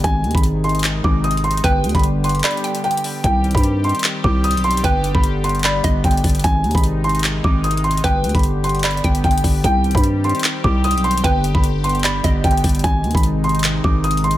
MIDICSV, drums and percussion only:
0, 0, Header, 1, 2, 480
1, 0, Start_track
1, 0, Key_signature, -3, "minor"
1, 0, Tempo, 400000
1, 49, Time_signature, 4, 2, 24, 8
1, 17251, End_track
2, 0, Start_track
2, 0, Title_t, "Drums"
2, 49, Note_on_c, 9, 36, 105
2, 50, Note_on_c, 9, 42, 85
2, 169, Note_off_c, 9, 36, 0
2, 170, Note_off_c, 9, 42, 0
2, 289, Note_on_c, 9, 42, 44
2, 369, Note_off_c, 9, 42, 0
2, 369, Note_on_c, 9, 42, 59
2, 416, Note_on_c, 9, 36, 113
2, 450, Note_off_c, 9, 42, 0
2, 450, Note_on_c, 9, 42, 73
2, 522, Note_off_c, 9, 42, 0
2, 522, Note_on_c, 9, 42, 78
2, 536, Note_off_c, 9, 36, 0
2, 642, Note_off_c, 9, 42, 0
2, 768, Note_on_c, 9, 42, 42
2, 832, Note_off_c, 9, 42, 0
2, 832, Note_on_c, 9, 42, 50
2, 897, Note_off_c, 9, 42, 0
2, 897, Note_on_c, 9, 42, 60
2, 952, Note_off_c, 9, 42, 0
2, 952, Note_on_c, 9, 42, 69
2, 1008, Note_on_c, 9, 39, 113
2, 1011, Note_off_c, 9, 42, 0
2, 1011, Note_on_c, 9, 42, 75
2, 1128, Note_off_c, 9, 39, 0
2, 1131, Note_off_c, 9, 42, 0
2, 1250, Note_on_c, 9, 36, 98
2, 1370, Note_off_c, 9, 36, 0
2, 1489, Note_on_c, 9, 42, 63
2, 1569, Note_off_c, 9, 42, 0
2, 1569, Note_on_c, 9, 42, 63
2, 1649, Note_off_c, 9, 42, 0
2, 1649, Note_on_c, 9, 42, 65
2, 1729, Note_off_c, 9, 42, 0
2, 1729, Note_on_c, 9, 42, 51
2, 1809, Note_off_c, 9, 42, 0
2, 1809, Note_on_c, 9, 42, 68
2, 1889, Note_off_c, 9, 42, 0
2, 1889, Note_on_c, 9, 42, 84
2, 1969, Note_on_c, 9, 36, 106
2, 1970, Note_off_c, 9, 42, 0
2, 1970, Note_on_c, 9, 42, 86
2, 2089, Note_off_c, 9, 36, 0
2, 2090, Note_off_c, 9, 42, 0
2, 2208, Note_on_c, 9, 42, 71
2, 2272, Note_off_c, 9, 42, 0
2, 2272, Note_on_c, 9, 42, 60
2, 2336, Note_off_c, 9, 42, 0
2, 2336, Note_on_c, 9, 36, 113
2, 2336, Note_on_c, 9, 42, 52
2, 2393, Note_off_c, 9, 42, 0
2, 2393, Note_on_c, 9, 42, 41
2, 2442, Note_off_c, 9, 42, 0
2, 2442, Note_on_c, 9, 42, 81
2, 2456, Note_off_c, 9, 36, 0
2, 2562, Note_off_c, 9, 42, 0
2, 2690, Note_on_c, 9, 42, 68
2, 2753, Note_off_c, 9, 42, 0
2, 2753, Note_on_c, 9, 42, 58
2, 2816, Note_off_c, 9, 42, 0
2, 2816, Note_on_c, 9, 42, 50
2, 2873, Note_off_c, 9, 42, 0
2, 2873, Note_on_c, 9, 42, 39
2, 2928, Note_off_c, 9, 42, 0
2, 2928, Note_on_c, 9, 39, 120
2, 2928, Note_on_c, 9, 42, 64
2, 3008, Note_off_c, 9, 42, 0
2, 3008, Note_on_c, 9, 42, 64
2, 3048, Note_off_c, 9, 39, 0
2, 3088, Note_off_c, 9, 42, 0
2, 3088, Note_on_c, 9, 42, 63
2, 3169, Note_off_c, 9, 42, 0
2, 3169, Note_on_c, 9, 42, 78
2, 3289, Note_off_c, 9, 42, 0
2, 3296, Note_on_c, 9, 42, 75
2, 3409, Note_off_c, 9, 42, 0
2, 3409, Note_on_c, 9, 42, 46
2, 3489, Note_off_c, 9, 42, 0
2, 3489, Note_on_c, 9, 42, 63
2, 3569, Note_off_c, 9, 42, 0
2, 3569, Note_on_c, 9, 42, 80
2, 3651, Note_on_c, 9, 46, 89
2, 3689, Note_off_c, 9, 42, 0
2, 3771, Note_off_c, 9, 46, 0
2, 3889, Note_on_c, 9, 36, 102
2, 3891, Note_on_c, 9, 42, 86
2, 4009, Note_off_c, 9, 36, 0
2, 4011, Note_off_c, 9, 42, 0
2, 4130, Note_on_c, 9, 42, 43
2, 4210, Note_off_c, 9, 42, 0
2, 4210, Note_on_c, 9, 42, 58
2, 4256, Note_on_c, 9, 36, 112
2, 4290, Note_off_c, 9, 42, 0
2, 4290, Note_on_c, 9, 42, 72
2, 4362, Note_off_c, 9, 42, 0
2, 4362, Note_on_c, 9, 42, 77
2, 4376, Note_off_c, 9, 36, 0
2, 4482, Note_off_c, 9, 42, 0
2, 4609, Note_on_c, 9, 42, 42
2, 4673, Note_off_c, 9, 42, 0
2, 4673, Note_on_c, 9, 42, 50
2, 4736, Note_off_c, 9, 42, 0
2, 4736, Note_on_c, 9, 42, 61
2, 4792, Note_off_c, 9, 42, 0
2, 4792, Note_on_c, 9, 42, 69
2, 4848, Note_on_c, 9, 39, 112
2, 4851, Note_off_c, 9, 42, 0
2, 4851, Note_on_c, 9, 42, 72
2, 4968, Note_off_c, 9, 39, 0
2, 4971, Note_off_c, 9, 42, 0
2, 5090, Note_on_c, 9, 36, 100
2, 5210, Note_off_c, 9, 36, 0
2, 5329, Note_on_c, 9, 42, 65
2, 5408, Note_off_c, 9, 42, 0
2, 5408, Note_on_c, 9, 42, 66
2, 5488, Note_off_c, 9, 42, 0
2, 5488, Note_on_c, 9, 42, 63
2, 5568, Note_off_c, 9, 42, 0
2, 5568, Note_on_c, 9, 42, 52
2, 5648, Note_off_c, 9, 42, 0
2, 5648, Note_on_c, 9, 42, 69
2, 5728, Note_off_c, 9, 42, 0
2, 5728, Note_on_c, 9, 42, 85
2, 5809, Note_on_c, 9, 36, 106
2, 5810, Note_off_c, 9, 42, 0
2, 5810, Note_on_c, 9, 42, 86
2, 5929, Note_off_c, 9, 36, 0
2, 5930, Note_off_c, 9, 42, 0
2, 6048, Note_on_c, 9, 42, 72
2, 6168, Note_off_c, 9, 42, 0
2, 6176, Note_on_c, 9, 36, 112
2, 6282, Note_on_c, 9, 42, 81
2, 6296, Note_off_c, 9, 36, 0
2, 6402, Note_off_c, 9, 42, 0
2, 6529, Note_on_c, 9, 42, 67
2, 6593, Note_off_c, 9, 42, 0
2, 6593, Note_on_c, 9, 42, 57
2, 6656, Note_off_c, 9, 42, 0
2, 6656, Note_on_c, 9, 42, 51
2, 6713, Note_off_c, 9, 42, 0
2, 6713, Note_on_c, 9, 42, 41
2, 6769, Note_on_c, 9, 39, 120
2, 6772, Note_off_c, 9, 42, 0
2, 6772, Note_on_c, 9, 42, 74
2, 6889, Note_off_c, 9, 39, 0
2, 6892, Note_off_c, 9, 42, 0
2, 7008, Note_on_c, 9, 42, 94
2, 7011, Note_on_c, 9, 36, 100
2, 7128, Note_off_c, 9, 42, 0
2, 7131, Note_off_c, 9, 36, 0
2, 7249, Note_on_c, 9, 36, 97
2, 7250, Note_on_c, 9, 42, 64
2, 7330, Note_off_c, 9, 42, 0
2, 7330, Note_on_c, 9, 42, 66
2, 7369, Note_off_c, 9, 36, 0
2, 7410, Note_off_c, 9, 42, 0
2, 7410, Note_on_c, 9, 42, 65
2, 7489, Note_on_c, 9, 36, 99
2, 7490, Note_off_c, 9, 42, 0
2, 7490, Note_on_c, 9, 42, 69
2, 7492, Note_on_c, 9, 46, 90
2, 7554, Note_off_c, 9, 42, 0
2, 7554, Note_on_c, 9, 42, 70
2, 7609, Note_off_c, 9, 36, 0
2, 7612, Note_off_c, 9, 46, 0
2, 7617, Note_off_c, 9, 42, 0
2, 7617, Note_on_c, 9, 42, 71
2, 7674, Note_off_c, 9, 42, 0
2, 7674, Note_on_c, 9, 42, 73
2, 7730, Note_on_c, 9, 36, 104
2, 7731, Note_off_c, 9, 42, 0
2, 7731, Note_on_c, 9, 42, 87
2, 7850, Note_off_c, 9, 36, 0
2, 7851, Note_off_c, 9, 42, 0
2, 7970, Note_on_c, 9, 42, 43
2, 8051, Note_off_c, 9, 42, 0
2, 8051, Note_on_c, 9, 42, 60
2, 8097, Note_on_c, 9, 36, 112
2, 8130, Note_off_c, 9, 42, 0
2, 8130, Note_on_c, 9, 42, 72
2, 8203, Note_off_c, 9, 42, 0
2, 8203, Note_on_c, 9, 42, 77
2, 8217, Note_off_c, 9, 36, 0
2, 8323, Note_off_c, 9, 42, 0
2, 8450, Note_on_c, 9, 42, 42
2, 8513, Note_off_c, 9, 42, 0
2, 8513, Note_on_c, 9, 42, 52
2, 8577, Note_off_c, 9, 42, 0
2, 8577, Note_on_c, 9, 42, 62
2, 8633, Note_off_c, 9, 42, 0
2, 8633, Note_on_c, 9, 42, 70
2, 8689, Note_on_c, 9, 39, 118
2, 8692, Note_off_c, 9, 42, 0
2, 8692, Note_on_c, 9, 42, 75
2, 8809, Note_off_c, 9, 39, 0
2, 8812, Note_off_c, 9, 42, 0
2, 8930, Note_on_c, 9, 36, 97
2, 9050, Note_off_c, 9, 36, 0
2, 9169, Note_on_c, 9, 42, 64
2, 9250, Note_off_c, 9, 42, 0
2, 9250, Note_on_c, 9, 42, 64
2, 9329, Note_off_c, 9, 42, 0
2, 9329, Note_on_c, 9, 42, 66
2, 9410, Note_off_c, 9, 42, 0
2, 9410, Note_on_c, 9, 42, 51
2, 9490, Note_off_c, 9, 42, 0
2, 9490, Note_on_c, 9, 42, 67
2, 9569, Note_off_c, 9, 42, 0
2, 9569, Note_on_c, 9, 42, 85
2, 9649, Note_on_c, 9, 36, 105
2, 9651, Note_off_c, 9, 42, 0
2, 9651, Note_on_c, 9, 42, 87
2, 9769, Note_off_c, 9, 36, 0
2, 9771, Note_off_c, 9, 42, 0
2, 9889, Note_on_c, 9, 42, 73
2, 9952, Note_off_c, 9, 42, 0
2, 9952, Note_on_c, 9, 42, 62
2, 10016, Note_off_c, 9, 42, 0
2, 10016, Note_on_c, 9, 36, 110
2, 10016, Note_on_c, 9, 42, 50
2, 10072, Note_off_c, 9, 42, 0
2, 10072, Note_on_c, 9, 42, 42
2, 10121, Note_off_c, 9, 42, 0
2, 10121, Note_on_c, 9, 42, 78
2, 10136, Note_off_c, 9, 36, 0
2, 10241, Note_off_c, 9, 42, 0
2, 10369, Note_on_c, 9, 42, 71
2, 10432, Note_off_c, 9, 42, 0
2, 10432, Note_on_c, 9, 42, 60
2, 10495, Note_off_c, 9, 42, 0
2, 10495, Note_on_c, 9, 42, 50
2, 10552, Note_off_c, 9, 42, 0
2, 10552, Note_on_c, 9, 42, 41
2, 10608, Note_on_c, 9, 39, 122
2, 10609, Note_off_c, 9, 42, 0
2, 10609, Note_on_c, 9, 42, 64
2, 10689, Note_off_c, 9, 42, 0
2, 10689, Note_on_c, 9, 42, 65
2, 10728, Note_off_c, 9, 39, 0
2, 10769, Note_off_c, 9, 42, 0
2, 10769, Note_on_c, 9, 42, 65
2, 10849, Note_off_c, 9, 42, 0
2, 10849, Note_on_c, 9, 42, 75
2, 10850, Note_on_c, 9, 36, 97
2, 10969, Note_off_c, 9, 42, 0
2, 10970, Note_off_c, 9, 36, 0
2, 10977, Note_on_c, 9, 42, 74
2, 11089, Note_on_c, 9, 36, 93
2, 11090, Note_off_c, 9, 42, 0
2, 11090, Note_on_c, 9, 42, 47
2, 11170, Note_off_c, 9, 42, 0
2, 11170, Note_on_c, 9, 42, 65
2, 11209, Note_off_c, 9, 36, 0
2, 11251, Note_off_c, 9, 42, 0
2, 11251, Note_on_c, 9, 42, 79
2, 11329, Note_on_c, 9, 36, 96
2, 11333, Note_on_c, 9, 46, 86
2, 11371, Note_off_c, 9, 42, 0
2, 11449, Note_off_c, 9, 36, 0
2, 11453, Note_off_c, 9, 46, 0
2, 11570, Note_on_c, 9, 36, 104
2, 11572, Note_on_c, 9, 42, 85
2, 11690, Note_off_c, 9, 36, 0
2, 11692, Note_off_c, 9, 42, 0
2, 11811, Note_on_c, 9, 42, 42
2, 11891, Note_off_c, 9, 42, 0
2, 11891, Note_on_c, 9, 42, 58
2, 11937, Note_on_c, 9, 36, 112
2, 11970, Note_off_c, 9, 42, 0
2, 11970, Note_on_c, 9, 42, 73
2, 12043, Note_off_c, 9, 42, 0
2, 12043, Note_on_c, 9, 42, 75
2, 12057, Note_off_c, 9, 36, 0
2, 12163, Note_off_c, 9, 42, 0
2, 12291, Note_on_c, 9, 42, 42
2, 12354, Note_off_c, 9, 42, 0
2, 12354, Note_on_c, 9, 42, 52
2, 12417, Note_off_c, 9, 42, 0
2, 12417, Note_on_c, 9, 42, 58
2, 12474, Note_off_c, 9, 42, 0
2, 12474, Note_on_c, 9, 42, 68
2, 12530, Note_on_c, 9, 39, 115
2, 12533, Note_off_c, 9, 42, 0
2, 12533, Note_on_c, 9, 42, 73
2, 12650, Note_off_c, 9, 39, 0
2, 12653, Note_off_c, 9, 42, 0
2, 12771, Note_on_c, 9, 36, 103
2, 12891, Note_off_c, 9, 36, 0
2, 13010, Note_on_c, 9, 42, 64
2, 13090, Note_off_c, 9, 42, 0
2, 13090, Note_on_c, 9, 42, 66
2, 13171, Note_off_c, 9, 42, 0
2, 13171, Note_on_c, 9, 42, 63
2, 13250, Note_off_c, 9, 42, 0
2, 13250, Note_on_c, 9, 42, 53
2, 13331, Note_off_c, 9, 42, 0
2, 13331, Note_on_c, 9, 42, 69
2, 13410, Note_off_c, 9, 42, 0
2, 13410, Note_on_c, 9, 42, 88
2, 13490, Note_on_c, 9, 36, 108
2, 13491, Note_off_c, 9, 42, 0
2, 13491, Note_on_c, 9, 42, 85
2, 13610, Note_off_c, 9, 36, 0
2, 13611, Note_off_c, 9, 42, 0
2, 13730, Note_on_c, 9, 42, 71
2, 13850, Note_off_c, 9, 42, 0
2, 13857, Note_on_c, 9, 36, 111
2, 13963, Note_on_c, 9, 42, 77
2, 13977, Note_off_c, 9, 36, 0
2, 14083, Note_off_c, 9, 42, 0
2, 14210, Note_on_c, 9, 42, 68
2, 14274, Note_off_c, 9, 42, 0
2, 14274, Note_on_c, 9, 42, 59
2, 14338, Note_off_c, 9, 42, 0
2, 14338, Note_on_c, 9, 42, 50
2, 14394, Note_off_c, 9, 42, 0
2, 14394, Note_on_c, 9, 42, 41
2, 14450, Note_on_c, 9, 39, 116
2, 14453, Note_off_c, 9, 42, 0
2, 14453, Note_on_c, 9, 42, 73
2, 14570, Note_off_c, 9, 39, 0
2, 14573, Note_off_c, 9, 42, 0
2, 14689, Note_on_c, 9, 42, 87
2, 14691, Note_on_c, 9, 36, 101
2, 14809, Note_off_c, 9, 42, 0
2, 14811, Note_off_c, 9, 36, 0
2, 14929, Note_on_c, 9, 36, 94
2, 14930, Note_on_c, 9, 42, 64
2, 15009, Note_off_c, 9, 42, 0
2, 15009, Note_on_c, 9, 42, 63
2, 15049, Note_off_c, 9, 36, 0
2, 15090, Note_off_c, 9, 42, 0
2, 15090, Note_on_c, 9, 42, 64
2, 15168, Note_on_c, 9, 36, 102
2, 15169, Note_off_c, 9, 42, 0
2, 15169, Note_on_c, 9, 42, 73
2, 15170, Note_on_c, 9, 46, 87
2, 15232, Note_off_c, 9, 42, 0
2, 15232, Note_on_c, 9, 42, 70
2, 15288, Note_off_c, 9, 36, 0
2, 15290, Note_off_c, 9, 46, 0
2, 15296, Note_off_c, 9, 42, 0
2, 15296, Note_on_c, 9, 42, 72
2, 15352, Note_off_c, 9, 42, 0
2, 15352, Note_on_c, 9, 42, 70
2, 15409, Note_on_c, 9, 36, 106
2, 15410, Note_off_c, 9, 42, 0
2, 15410, Note_on_c, 9, 42, 84
2, 15529, Note_off_c, 9, 36, 0
2, 15530, Note_off_c, 9, 42, 0
2, 15649, Note_on_c, 9, 42, 45
2, 15729, Note_off_c, 9, 42, 0
2, 15729, Note_on_c, 9, 42, 60
2, 15776, Note_on_c, 9, 36, 116
2, 15808, Note_off_c, 9, 42, 0
2, 15808, Note_on_c, 9, 42, 72
2, 15881, Note_off_c, 9, 42, 0
2, 15881, Note_on_c, 9, 42, 81
2, 15896, Note_off_c, 9, 36, 0
2, 16001, Note_off_c, 9, 42, 0
2, 16128, Note_on_c, 9, 42, 42
2, 16192, Note_off_c, 9, 42, 0
2, 16192, Note_on_c, 9, 42, 52
2, 16256, Note_off_c, 9, 42, 0
2, 16256, Note_on_c, 9, 42, 59
2, 16312, Note_off_c, 9, 42, 0
2, 16312, Note_on_c, 9, 42, 69
2, 16367, Note_on_c, 9, 39, 120
2, 16371, Note_off_c, 9, 42, 0
2, 16371, Note_on_c, 9, 42, 76
2, 16487, Note_off_c, 9, 39, 0
2, 16491, Note_off_c, 9, 42, 0
2, 16610, Note_on_c, 9, 36, 97
2, 16730, Note_off_c, 9, 36, 0
2, 16848, Note_on_c, 9, 42, 64
2, 16929, Note_off_c, 9, 42, 0
2, 16929, Note_on_c, 9, 42, 66
2, 17008, Note_off_c, 9, 42, 0
2, 17008, Note_on_c, 9, 42, 62
2, 17089, Note_off_c, 9, 42, 0
2, 17089, Note_on_c, 9, 42, 51
2, 17170, Note_off_c, 9, 42, 0
2, 17170, Note_on_c, 9, 42, 66
2, 17251, Note_off_c, 9, 42, 0
2, 17251, End_track
0, 0, End_of_file